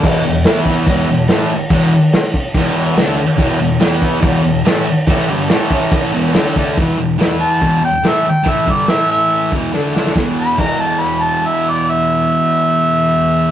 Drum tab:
CC |x-x-x-x-x-x-x-x-|x-x-x-x-x-x-x-x-|x-x-x-x-x-x-x-x-|x-x-x-x-x-x-x-x-|
HH |----------------|----------------|----------------|----------------|
SD |----o-------o---|----o-------o---|----o-------o---|----o-------o---|
BD |o-----o-o-------|o-----o-o-------|o-----o-o-------|o-----o-o-----o-|

CC |----------------|----------------|----x-----------|----------------|
HH |o---o---o---o---|o---o---o-------|----------------|----------------|
SD |----o-------o---|----o-------o-oo|o---------------|----------------|
BD |o-------o-------|o-o-------o-----|o---o-----------|----------------|